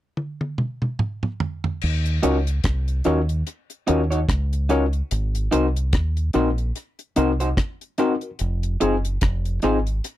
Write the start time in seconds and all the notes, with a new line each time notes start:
0.17 high tom
0.41 high tom
0.58 mid tom
0.82 mid tom
0.99 mid tom
1.23 mid tom
1.40 floor tom
1.64 floor tom
1.81 D#2, crash
2.05 closed hi-hat
2.23 C#2 C#4 D#4 F4 F#4 A#4 C#5, closed hi-hat
2.47 closed hi-hat
2.64 C2, kick, cross-stick, closed hi-hat
2.88 closed hi-hat
3.04 D#2 C#4 D#4 F4 F#4 A#4 C#5, closed hi-hat
3.29 closed hi-hat
3.47 closed hi-hat
3.70 closed hi-hat
3.87 D#2 C#4 D#4 F4 F#4 A#4 C#5, closed hi-hat
4.11 D#4 F#4 C#5, closed hi-hat
4.29 C#2, kick, cross-stick, closed hi-hat
4.53 closed hi-hat
4.69 C#4 D#4 F4 F#4 A#4 C#5, closed hi-hat
4.93 closed hi-hat
5.11 G#1, closed hi-hat
5.35 closed hi-hat
5.51 C2 C4 D#4 F#4 A#4 C5, closed hi-hat
5.76 closed hi-hat
5.93 D#2, kick, cross-stick, closed hi-hat
6.17 closed hi-hat
6.33 A#1 C4 D#4 F#4 A#4 C5, closed hi-hat
6.58 closed hi-hat
6.76 closed hi-hat
6.99 closed hi-hat
7.16 C2 C4 D#4 F#4 A#4 C5, closed hi-hat
7.40 D#4 F#4 C5, closed hi-hat
7.57 kick, cross-stick, closed hi-hat
7.81 closed hi-hat
7.98 C4 D#4 F#4 A#4 C5, closed hi-hat
8.21 F#4 A#4, closed hi-hat
8.39 F1, closed hi-hat
8.63 closed hi-hat
8.80 F#1 C4 D#4 F4 G#4 C5, closed hi-hat
9.05 closed hi-hat
9.21 F1, kick, cross-stick, closed hi-hat
9.45 closed hi-hat
9.62 G#1 C4 D#4 F4 G#4 C5, closed hi-hat
9.87 closed hi-hat
10.04 closed hi-hat